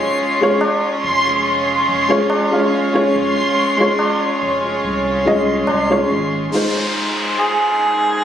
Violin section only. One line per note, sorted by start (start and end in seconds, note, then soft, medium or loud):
0.00 6.48 G#3 medium
0.00 6.48 C#4 medium
0.00 6.48 F4 medium
0.00 6.49 C#5 medium
6.51 8.24 G#3 medium
6.51 8.24 D#4 medium
6.51 8.24 F4 medium
6.51 8.24 C5 medium